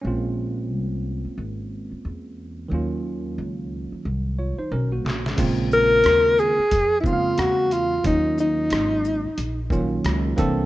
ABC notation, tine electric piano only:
X:1
M:4/4
L:1/16
Q:"Swing 16ths" 1/4=90
K:Bbm
V:1 name="Tine electric piano"
z16 | z8 z2 [Fd] [Ec] [DB] [B,G]2 z | z16 | z16 |]
V:2 name="Tine electric piano"
[A,B,CDF]16 | [E,G,B,DF]12- [E,G,B,DF]2 z2 | [D,A,B,CF]8 z2 [D,A,B,CEf]6 | [E,G,B,DF]8 z2 [E,F,G,B,DF]4 [=E,B,C=D=A]2 |]